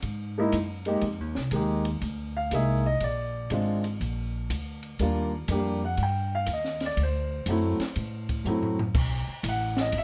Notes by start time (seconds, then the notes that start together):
0.02 G#2, kick, ride
0.38 G#3 A#3 D#4 E4
0.52 F#2, kick, hi-hat pedal, ride
0.85 G#3 A#3 D#4 G4, ride
1.01 F2, kick, ride
1.20 D#2
1.35 C2, snare
1.51 D#2 G#3 A#3 D#4, kick, hi-hat pedal, ride
1.55 G4
1.85 ride
2.01 D2, kick, ride
2.37 F5
2.51 C2 G#3 A#3 D#4 G#4 E5, kick, hi-hat pedal, ride
2.86 D#5
3.00 A#1 D5, kick, ride
3.50 G#1 G#3 C4 D4 F4, kick, hi-hat pedal, ride
3.84 ride
4.00 A#1, kick, ride
4.50 D2, kick, hi-hat pedal, ride
4.83 ride
4.99 D#2 G3 A#3 D4 F4, kick, ride
5.48 F2 G3 A#3 D4 G4, kick, hi-hat pedal, ride
5.85 F#5
5.97 G2, kick, ride
6.03 G5
6.35 F5
6.46 D#2, kick, hi-hat pedal, ride
6.53 D#5
6.64 snare
6.80 snare, ride
6.86 D5
6.97 D2, kick, ride
7.03 C5
7.46 F#2 F#3 A3, kick, hi-hat pedal, ride
7.50 C4 E4
7.79 muted upright bass stroke, snare, ride
7.96 A2, kick, ride
8.29 kick, ride
8.45 F#2 F#3 A3 C4 E4, floor tom, hi-hat pedal
8.63 floor tom
8.79 floor tom
8.95 B1, kick, crash
9.28 muted upright bass stroke
9.43 A1, kick, hi-hat pedal, ride
9.48 F#5
9.77 snare
9.81 D#5
9.92 G1, kick, ride
9.98 E5